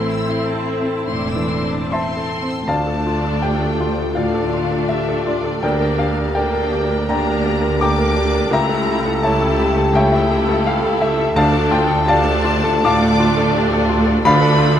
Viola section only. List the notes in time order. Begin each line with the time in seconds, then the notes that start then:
Already playing: C4 E4
2.68 A3 D4
4.16 A3 D4
5.63 A#3 D4
6.36 A#3 D4
7.10 A#3 D4
7.82 A#3 D4
8.53 A3 E4
9.23 A3 E4
9.95 A3 E4
11.36 A3 D4
12.07 A3 D4
12.84 A3 D4
14.25 A3 D4